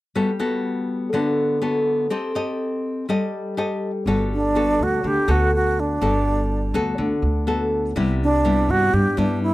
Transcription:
0.15 nylon-string guitar G3 B3 F#4 A4
0.40 nylon-string guitar B3 F#4 A4
1.13 nylon-string guitar D3 B3 F#4 A4
1.62 nylon-string guitar B3 F#4 A4
2.10 nylon-string guitar C4 G4 A4 D#5
2.35 nylon-string guitar G4 A4 D#5
3.09 nylon-string guitar G3 G4 A4 D#5
3.57 nylon-string guitar G4 A4 D#5
4.06 upright bass G1, nylon-string guitar G3 B3 F#4 A4
4.33 alto flute D4
4.55 nylon-string guitar B3 F#4 A4
4.79 upright bass D2, alto flute F#4
5.03 upright bass D2, nylon-string guitar D3, alto flute G4
5.28 upright bass D2, nylon-string guitar B3 F#4 A4, alto flute F#4
5.55 alto flute F#4
5.80 alto flute D4
6.01 upright bass G1, nylon-string guitar G3 B3 F#4 A4
6.74 upright bass D2, nylon-string guitar B3 F#4 A4
6.98 upright bass D2, nylon-string guitar D3
7.22 upright bass D2
7.47 nylon-string guitar B3 F#4 A4
7.96 upright bass C2, nylon-string guitar C3 G3 B3 E4
8.23 alto flute D4
8.45 nylon-string guitar G3 B3 E4
8.69 upright bass G2, alto flute F#4
8.93 upright bass G2, nylon-string guitar G2, alto flute G4
9.17 upright bass G2, nylon-string guitar G3 B3 E4, alto flute D4
9.43 alto flute E4

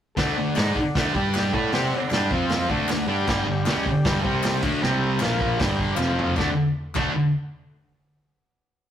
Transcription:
0.15 picked electric bass D2, distorted electric guitar D3 A3 D4, transistor combo organ A4 D5 F#5, kick, snare, open hi-hat
0.37 picked electric bass D2, distorted electric guitar D3 A3
0.56 picked electric bass G#2, distorted electric guitar G#3 D#4 G#4, snare, clap, open hi-hat
0.75 muted distorted electric guitar stroke, muted picked electric bass stroke, kick
0.95 picked electric bass D2, distorted electric guitar D3 A3 D4, kick, snare, open hi-hat
1.13 picked electric bass G2, distorted electric guitar G3 D4 G4, transistor combo organ G4 D5 G5, kick
1.34 snare, clap, open hi-hat
1.53 picked electric bass A2, distorted electric guitar A3 E4 A4, transistor combo organ A4 D5 F#5, kick
1.72 picked electric bass C3, distorted electric guitar C4 G4 C5, snare, open hi-hat
1.92 muted picked electric bass stroke, muted distorted electric guitar stroke
2.10 picked electric bass G2, distorted electric guitar G3 D4, snare, clap, open hi-hat
2.14 distorted electric guitar G4
2.31 picked electric bass F2, distorted electric guitar F3 C4 F4, transistor combo organ F4 C5 F5, kick
2.49 snare, open hi-hat
2.68 picked electric bass D2, distorted electric guitar D3 A3 D4, transistor combo organ A4 D5 F#5, kick
2.88 picked electric bass D2, distorted electric guitar D3 A3, snare, clap, open hi-hat
3.06 picked electric bass G2, distorted electric guitar G3 D4 G4
3.24 distorted electric guitar G2, transistor combo organ G4 D5 G5, crash
3.28 picked electric bass G1, distorted electric guitar D3 G3, kick, snare
3.46 picked electric bass G1, distorted electric guitar G2 D3
3.66 picked electric bass C#2, distorted electric guitar C#3 G#3 C#4, snare, clap, open hi-hat
3.86 muted distorted electric guitar stroke, muted picked electric bass stroke, kick
4.04 picked electric bass G1, distorted electric guitar G2 D3 G3, kick, snare, open hi-hat
4.23 picked electric bass C2, distorted electric guitar C3 G3 C4, transistor combo organ G4 C5 G5, kick
4.43 snare, clap, open hi-hat
4.63 picked electric bass D2, distorted electric guitar D3 A3 D4, kick, crash
4.82 picked electric bass C2, distorted electric guitar C3 G3 C4, transistor combo organ G4 C5 G5, snare
5.19 picked electric bass A#1, distorted electric guitar A#2 F3 A#3, transistor combo organ F4 A#4 F5, snare, clap, open hi-hat
5.41 kick
5.56 picked electric bass G1, distorted electric guitar G2, transistor combo organ G4 D5 G5, kick, open hi-hat
5.61 distorted electric guitar D3 G3, snare
5.79 kick
5.95 picked electric bass F1, distorted electric guitar F2, transistor combo organ F4 C5 F5, clap
6.00 distorted electric guitar C3 F3, snare
6.19 floor tom
6.36 picked electric bass D2, distorted electric guitar D3 A3 D4, transistor combo organ A4 D5 F#5, kick, snare, clap
6.95 picked electric bass D2, distorted electric guitar D3 A3 D4, kick, clap, crash

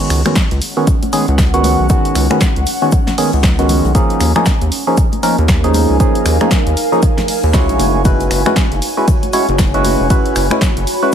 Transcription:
Already playing: synth stab D#3 G#3 B3 C#4 F#4, ambient pad C#4
0.00 closed hi-hat
0.10 analog synth bass C#2, finger snap, open hi-hat, shaker
0.25 synth stab D#3 G#3 B3 C#4 F#4, finger snap, closed hi-hat, high conga, low conga
0.32 ambient pad F#5, snare, closed hi-hat, shaker
0.36 kick, snare
0.51 analog synth bass C#2, closed hi-hat
0.62 open hi-hat, shaker
0.77 synth stab D#3 G#3 B3 C#4 F#4
0.87 kick, closed hi-hat, low conga, shaker
1.03 closed hi-hat, high conga
1.13 synth stab D#3 G#3 B3 C#4 G#4, open hi-hat, shaker
1.28 analog synth bass C#2, closed hi-hat
1.38 kick, snare, closed hi-hat, shaker
1.54 synth stab D#3 G#3 B3 C#4 F#4, closed hi-hat
1.64 open hi-hat, high conga, shaker
1.80 analog synth bass B1
1.89 synth stab D#3 G#3 B3 C#4 F#4, kick, closed hi-hat, shaker
2.05 closed hi-hat
2.15 analog synth bass C#2, finger snap, open hi-hat, shaker
2.30 synth stab D#3 G#3 B3 C#4 F#4, finger snap, closed hi-hat, high conga
2.41 kick, snare, closed hi-hat, shaker
2.56 analog synth bass C#2, closed hi-hat
2.66 open hi-hat, shaker
2.82 synth stab D#3 G#3 B3 C#4 F#4, closed hi-hat
2.92 kick, closed hi-hat, shaker
3.07 snare, closed hi-hat, high conga, low conga
3.18 synth stab D#3 G#3 B3 C#4 G#4, open hi-hat
3.33 analog synth bass C#2, closed hi-hat
3.43 kick, snare, closed hi-hat, shaker
3.59 synth stab D#3 G#3 B3 C#4 F#4, closed hi-hat
3.69 open hi-hat, high conga, low conga, shaker
3.85 analog synth bass B1, closed hi-hat
3.95 synth stab F3 A#3 C#4 D#4 G#4, ambient pad D#4, kick, closed hi-hat, shaker
4.10 closed hi-hat
4.21 analog synth bass D#2, finger snap, open hi-hat, shaker
4.36 synth stab F3 A#3 C#4 D#4 G#4, finger snap, closed hi-hat, high conga, low conga
4.46 kick, snare, closed hi-hat, shaker
4.53 ambient pad G#5
4.61 analog synth bass D#2, closed hi-hat
4.70 ambient pad A#4, open hi-hat, shaker
4.87 synth stab F3 A#3 C#4 D#4 G#4
4.97 kick, closed hi-hat, low conga, shaker
5.12 ambient pad F5, closed hi-hat, high conga
5.23 synth stab F3 A#3 C#4 D#4 A#4, open hi-hat, shaker
5.38 analog synth bass D#2, closed hi-hat
5.48 kick, snare, closed hi-hat, shaker
5.64 synth stab F3 A#3 C#4 D#4 G#4, closed hi-hat
5.74 open hi-hat, high conga, shaker
5.90 analog synth bass C#2
6.00 synth stab F3 A#3 C#4 D#4 G#4, kick, closed hi-hat, shaker
6.15 closed hi-hat
6.26 analog synth bass D#2, finger snap, open hi-hat, shaker
6.41 synth stab F3 A#3 C#4 D#4 G#4, finger snap, closed hi-hat, high conga
6.51 kick, snare, closed hi-hat, shaker
6.67 analog synth bass D#2, closed hi-hat
6.77 open hi-hat, shaker
6.92 synth stab F3 A#3 C#4 D#4 G#4, closed hi-hat
7.02 kick, closed hi-hat, shaker
7.17 snare, closed hi-hat, high conga, low conga
7.28 open hi-hat
7.43 analog synth bass D#2, closed hi-hat
7.53 analog synth bass C#2, synth stab G#3 C#4 E4 F#4 C#5, kick, snare, closed hi-hat, shaker
7.69 analog synth bass A#1, closed hi-hat
7.79 analog synth bass F#1, ambient pad F#4, open hi-hat, high conga, low conga, shaker
8.01 ambient pad C#5
8.05 synth stab G#3 C#4 E4 F#4 B4, kick, closed hi-hat, ride, shaker
8.20 closed hi-hat
8.31 analog synth bass F#1, finger snap, open hi-hat, shaker
8.46 synth stab G#3 C#4 E4 F#4 B4, finger snap, closed hi-hat, high conga, low conga
8.56 kick, snare, closed hi-hat, ride, shaker
8.72 analog synth bass F#1, closed hi-hat
8.82 open hi-hat, shaker
8.97 synth stab G#3 C#4 E4 F#4 B4
9.08 kick, closed hi-hat, ride, low conga, shaker
9.23 closed hi-hat, high conga
9.33 synth stab G#3 C#4 E4 F#4 C#5, open hi-hat, shaker
9.49 analog synth bass F#1, closed hi-hat
9.58 kick, snare, closed hi-hat, ride, shaker
9.65 ambient pad B5
9.74 synth stab G#3 C#4 E4 F#4 B4, closed hi-hat
9.84 open hi-hat, high conga, shaker
10.00 analog synth bass E1
10.10 synth stab G#3 C#4 E4 F#4 B4, kick, closed hi-hat, ride, shaker
10.26 closed hi-hat
10.36 analog synth bass F#1, finger snap, open hi-hat, shaker
10.50 synth stab G#3 C#4 E4 F#4 B4, finger snap, closed hi-hat, high conga
10.61 kick, snare, closed hi-hat, ride, shaker
10.77 analog synth bass F#1, closed hi-hat
10.87 open hi-hat, shaker
11.02 synth stab G#3 C#4 E4 F#4 B4, closed hi-hat

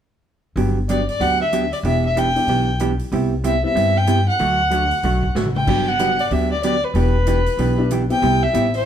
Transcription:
0.56 upright bass G1, hollow-body jazz guitar D3 F#3 B3 D4 G4, open hi-hat
0.89 hollow-body jazz guitar D3 F#3 B3 D4 G4, fiddle D5, closed hi-hat
1.09 fiddle D5, open hi-hat
1.20 upright bass D2, hollow-body jazz guitar D3 F#3 B3 D4 G4, fiddle F#5, open hi-hat
1.41 fiddle E5
1.52 hollow-body jazz guitar D3 F#3 B3 D4 G4, closed hi-hat
1.73 fiddle D5, open hi-hat
1.83 upright bass E1, hollow-body jazz guitar E3 B3 D4 G4, fiddle E5, open hi-hat
2.05 fiddle E5
2.17 hollow-body jazz guitar E3 B3 D4 G4, fiddle G5, closed hi-hat
2.35 honky-tonk piano G3 B3 D4 E4, open hi-hat
2.47 upright bass B1, hollow-body jazz guitar E3 B3 D4 G4, open hi-hat
2.79 hollow-body jazz guitar E3 B3 D4 G4, closed hi-hat
2.99 open hi-hat
3.12 upright bass C2, hollow-body jazz guitar C3 G3 B3 E4 G4, open hi-hat
3.44 hollow-body jazz guitar C3 G3 B3 E4 G4, fiddle E5, closed hi-hat
3.63 honky-tonk piano G3 B3 C4 E4, fiddle E5
3.75 upright bass G2, hollow-body jazz guitar C3 G3 B3 E4 G4, open hi-hat
3.97 fiddle G5
4.07 hollow-body jazz guitar C3 G3 B3 E4 G4, closed hi-hat
4.28 fiddle F#5
4.39 upright bass D2, hollow-body jazz guitar D3 F#3 A3 D4 F#4, open hi-hat
4.70 hollow-body jazz guitar D3 F#3 A3 D4 F#4, honky-tonk piano F#3 A3 D4 F#4, closed hi-hat
4.91 open hi-hat
5.03 upright bass B1, hollow-body jazz guitar D3 F#3 A3 D4 F#4, open hi-hat
5.23 kick
5.35 upright bass A1, hollow-body jazz guitar D3 F#3 A3 D4 F#4, snare
5.45 mid tom
5.55 fiddle G5, mid tom
5.67 upright bass G1, hollow-body jazz guitar D3 F#3 B3 D4 G4, honky-tonk piano G3 B3 D4 F#4, kick, crash
5.88 fiddle F#5
5.99 hollow-body jazz guitar D3 F#3 B3 D4 G4, honky-tonk piano G3 B3 D4 F#4, closed hi-hat
6.19 fiddle D5, open hi-hat
6.30 upright bass D2, hollow-body jazz guitar D3 F#3 B3 D4 G4, fiddle E5, open hi-hat
6.52 fiddle D5
6.63 hollow-body jazz guitar D3 F#3 B3 D4 G4, fiddle D5, closed hi-hat
6.84 fiddle B4
6.94 upright bass E1, hollow-body jazz guitar E3 B3 D4 G4, fiddle B4, open hi-hat
7.26 hollow-body jazz guitar E3 B3 D4 G4, closed hi-hat
7.46 open hi-hat
7.57 upright bass B1, hollow-body jazz guitar E3 B3 D4 G4, open hi-hat
7.78 honky-tonk piano B3 D4 E4 G4
7.90 hollow-body jazz guitar E3 B3 D4 G4, closed hi-hat
8.10 honky-tonk piano B3 C4 E4 G4, fiddle G5, open hi-hat
8.22 upright bass C2, hollow-body jazz guitar C3 G3 B3 E4 G4, open hi-hat
8.43 fiddle E5
8.53 upright bass A1, hollow-body jazz guitar C3 G3 B3 E4 G4, honky-tonk piano B3 C4 E4 G4, closed hi-hat
8.74 fiddle C5, open hi-hat

